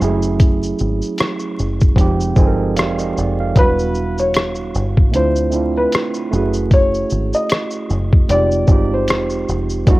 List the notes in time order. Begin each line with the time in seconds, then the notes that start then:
0.00 F#1 F#3 G#3 C#4 E4, shaker
0.04 A3 G#4
0.22 shaker
0.40 kick, closed hi-hat, shaker
0.63 shaker
0.79 G#1, shaker
1.02 shaker
1.18 cross-stick, closed hi-hat, shaker
1.40 shaker
1.59 F#1, shaker
1.81 kick, shaker
1.96 F1 F3 G#3 C4 D#4, kick, closed hi-hat, shaker
2.01 G4
2.21 shaker
2.36 G1 F3 G#3 C4 D#4 G#5, kick, shaker
2.41 A4
2.47 A#4
2.76 F1 D5 F5, cross-stick, closed hi-hat, shaker
2.99 D#5, shaker
3.17 F1 D5, shaker
3.40 F5
3.55 E1 F#3 B3 D4 E4 B4, kick, closed hi-hat, shaker
3.60 G3 F#4
3.79 shaker
3.95 shaker
4.18 C#5, shaker
4.34 cross-stick, closed hi-hat, shaker
4.55 shaker
4.74 G1, shaker
4.97 kick
5.12 D2 A3 C4 D4 E4 C5, closed hi-hat, shaker
5.17 F4
5.36 shaker
5.50 A3 C4 D4 E4, shaker
5.55 F4
5.77 B4
5.92 cross-stick, closed hi-hat, shaker
6.14 shaker
6.31 F#1 A3 C#4 E4 F#4, shaker
6.36 G#4
6.54 shaker
6.71 C#5, kick, closed hi-hat, shaker
6.94 shaker
7.10 G#1, shaker
7.33 D#5, shaker
7.50 cross-stick, closed hi-hat, shaker
7.71 shaker
7.90 F#1, shaker
8.13 kick
8.28 F1 G#3 C4 D#4 F4 D5, closed hi-hat, shaker
8.33 G4
8.51 shaker
8.67 G1 G#3 C4 D#4 F4, kick, shaker
8.72 G4
8.94 C5
9.08 F1, cross-stick, closed hi-hat, shaker
9.30 shaker
9.49 F1, shaker
9.70 shaker
9.85 E1 F#3 B3 D4 E4, kick, closed hi-hat, shaker
9.90 G3 F#4